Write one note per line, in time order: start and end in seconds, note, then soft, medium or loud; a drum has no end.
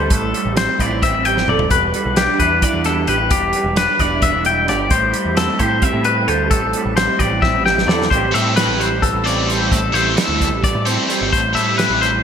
0.00 0.11 D2 medium
0.00 0.78 E3 medium
0.00 0.33 G3 medium
0.00 0.11 C5 medium
0.10 0.32 A1 medium
0.10 1.25 A2 medium
0.10 0.57 A4 medium
0.10 kick loud
0.10 closed hi-hat medium
0.34 1.27 G3 medium
0.34 closed hi-hat medium
0.45 0.67 A1 medium
0.55 1.01 C4 medium
0.55 0.81 C5 medium
0.55 snare loud
0.55 closed hi-hat medium
0.79 1.12 A1 medium
0.79 2.20 E3 medium
0.79 0.90 E4 medium
0.79 1.03 D5 medium
0.79 kick medium
0.79 closed hi-hat medium
0.90 1.48 G4 soft
1.02 1.68 C4 medium
1.02 1.25 E5 medium
1.02 kick loud
1.02 snare soft
1.02 closed hi-hat medium
1.12 1.47 A1 medium
1.25 1.72 E2 medium
1.25 1.95 G3 medium
1.25 1.48 G5 medium
1.25 closed hi-hat medium
1.37 snare medium
1.47 1.69 F1 medium
1.47 1.69 A4 medium
1.47 1.71 D5 medium
1.47 mid tom medium
1.59 floor tom loud
1.71 1.93 E1 loud
1.71 3.30 E2 medium
1.71 2.17 B4 medium
1.71 kick loud
1.71 closed hi-hat medium
1.94 2.85 G3 medium
1.94 closed hi-hat medium
2.06 2.27 B1 medium
2.16 2.62 D4 medium
2.16 2.40 G4 medium
2.16 snare loud
2.16 closed hi-hat medium
2.40 2.61 E2 medium
2.40 3.80 E3 medium
2.40 3.08 E4 medium
2.40 2.63 B4 medium
2.40 kick medium
2.40 closed hi-hat medium
2.62 3.29 D4 medium
2.62 2.85 D5 medium
2.62 kick loud
2.62 closed hi-hat medium
2.73 3.06 E2 medium
2.84 3.28 B2 medium
2.84 3.55 G3 medium
2.84 3.08 A4 medium
2.84 snare soft
2.84 closed hi-hat medium
3.07 3.31 A1 medium
3.07 3.99 G4 medium
3.07 3.31 B4 medium
3.07 closed hi-hat medium
3.31 3.53 E1 medium
3.31 4.91 E2 medium
3.31 3.77 G4 medium
3.31 kick loud
3.31 closed hi-hat loud
3.53 4.45 G3 medium
3.53 closed hi-hat medium
3.64 3.86 E1 medium
3.76 4.21 D4 medium
3.76 4.00 B4 medium
3.76 snare loud
3.76 closed hi-hat loud
3.99 4.32 E1 medium
3.99 5.59 E3 medium
3.99 4.68 E4 medium
3.99 4.23 D5 medium
3.99 kick medium
3.99 snare soft
3.99 closed hi-hat medium
4.22 4.88 D4 medium
4.22 4.45 E5 medium
4.22 kick loud
4.22 snare soft
4.22 closed hi-hat medium
4.34 4.69 E1 medium
4.44 4.88 B2 medium
4.44 5.13 G3 medium
4.44 4.69 G5 medium
4.44 closed hi-hat medium
4.68 4.90 G1 medium
4.68 4.93 G4 medium
4.68 4.92 D5 medium
4.68 snare soft
4.68 closed hi-hat medium
4.90 5.12 A1 loud
4.90 6.05 A2 medium
4.90 5.37 C5 medium
4.90 kick loud
4.90 closed hi-hat medium
5.13 6.05 G3 medium
5.13 closed hi-hat medium
5.25 5.47 E2 medium
5.36 5.82 C4 medium
5.36 5.59 A4 medium
5.36 snare loud
5.36 closed hi-hat medium
5.59 5.81 A2 medium
5.59 7.18 E3 medium
5.59 6.27 G4 medium
5.59 5.82 C5 medium
5.59 kick medium
5.59 closed hi-hat medium
5.82 6.96 C4 medium
5.82 6.06 E5 medium
5.82 kick loud
5.82 closed hi-hat medium
5.93 6.26 A2 medium
6.04 6.51 E2 medium
6.04 6.74 G3 medium
6.04 6.28 B4 medium
6.04 closed hi-hat medium
6.27 6.51 D2 medium
6.27 6.78 A4 medium
6.27 6.50 C5 medium
6.27 closed hi-hat medium
6.50 6.73 A1 loud
6.50 7.65 A2 medium
6.50 6.96 A4 medium
6.50 kick loud
6.50 closed hi-hat medium
6.73 7.65 G3 medium
6.73 closed hi-hat medium
6.86 7.07 A1 medium
6.97 7.41 C4 medium
6.97 7.19 C5 medium
6.97 snare loud
6.97 closed hi-hat medium
7.18 7.52 A1 medium
7.18 8.08 E3 medium
7.18 7.89 G4 medium
7.18 7.42 D5 medium
7.18 kick medium
7.18 closed hi-hat medium
7.42 8.09 C4 medium
7.42 7.65 E5 medium
7.42 kick loud
7.42 snare medium
7.53 7.87 A1 medium
7.66 8.12 E2 medium
7.66 8.12 G3 medium
7.66 7.89 G5 medium
7.66 snare medium
7.78 snare medium
7.87 8.09 E2 medium
7.87 8.10 A4 medium
7.87 8.10 D5 medium
7.87 snare medium
8.02 snare medium
8.10 8.33 A1 medium
8.10 9.04 A2 medium
8.10 8.55 E3 soft
8.10 8.33 G3 medium
8.10 8.34 C5 medium
8.10 kick loud
8.10 closed hi-hat medium
8.15 9.25 C4 medium
8.15 9.75 G4 medium
8.32 8.67 A2 medium
8.32 8.80 G3 medium
8.32 8.54 A3 medium
8.32 8.54 C4 medium
8.32 8.55 E4 medium
8.32 8.56 A4 medium
8.32 8.56 E5 medium
8.32 closed hi-hat medium
8.55 10.17 E3 medium
8.55 8.86 A3 medium
8.55 8.86 C4 medium
8.55 8.86 E4 medium
8.55 8.87 A4 medium
8.55 8.80 B4 medium
8.55 snare loud
8.55 closed hi-hat medium
8.68 9.11 A1 medium
8.80 9.49 G3 medium
8.80 9.03 C5 medium
8.80 snare soft
8.80 closed hi-hat medium
9.02 9.71 E2 medium
9.02 9.26 A4 medium
9.02 kick medium
9.02 snare soft
9.02 closed hi-hat medium
9.13 9.90 A1 medium
9.25 9.45 A3 medium
9.25 9.45 C4 medium
9.25 10.86 C4 medium
9.25 9.46 E4 medium
9.25 9.47 A4 medium
9.25 9.49 D5 medium
9.25 closed hi-hat medium
9.46 9.95 G3 medium
9.46 9.77 A3 medium
9.46 9.78 C4 medium
9.46 9.78 E4 medium
9.46 9.78 A4 medium
9.46 9.71 C5 medium
9.46 closed hi-hat medium
9.71 10.64 A2 medium
9.71 9.94 A4 medium
9.71 kick loud
9.71 closed hi-hat medium
9.93 10.16 A1 medium
9.93 10.41 G3 medium
9.93 10.14 A3 medium
9.93 10.14 C4 medium
9.93 10.15 E4 medium
9.93 10.16 A4 medium
9.93 10.18 C5 medium
9.93 closed hi-hat medium
10.15 11.78 E3 medium
10.15 10.47 A3 medium
10.15 10.47 C4 medium
10.15 10.47 E4 medium
10.15 10.47 A4 medium
10.15 10.64 A4 medium
10.15 snare loud
10.15 closed hi-hat medium
10.28 10.52 D2 medium
10.41 11.09 G3 medium
10.41 kick medium
10.41 closed hi-hat medium
10.52 10.74 A1 medium
10.63 11.32 E2 medium
10.63 10.86 D5 medium
10.63 kick medium
10.63 snare soft
10.63 closed hi-hat medium
10.75 10.97 A2 medium
10.86 11.07 A3 medium
10.86 11.07 C4 medium
10.86 12.23 C4 medium
10.86 11.08 E4 medium
10.86 11.08 A4 medium
10.86 11.31 C5 medium
10.86 closed hi-hat medium
11.08 11.58 G3 medium
11.08 11.39 A3 medium
11.08 11.39 C4 medium
11.08 11.39 E4 medium
11.08 11.39 A4 medium
11.08 closed hi-hat medium
11.21 11.32 G1 medium
11.32 11.55 A1 medium
11.32 12.23 A2 medium
11.32 11.54 C5 medium
11.32 kick loud
11.32 closed hi-hat medium
11.53 11.88 A2 medium
11.53 11.77 A3 medium
11.53 11.77 C4 medium
11.53 11.77 E4 medium
11.53 11.77 A4 medium
11.53 11.78 E5 medium
11.53 closed hi-hat medium
11.58 12.02 G3 medium
11.78 12.23 E3 medium
11.78 12.08 A3 medium
11.78 12.08 C4 medium
11.78 12.08 E4 medium
11.78 12.09 A4 medium
11.78 12.01 B4 medium
11.78 snare medium
11.78 closed hi-hat medium
11.90 12.23 A1 medium
12.01 12.23 G3 medium
12.01 12.23 C5 medium
12.01 snare soft
12.01 closed hi-hat medium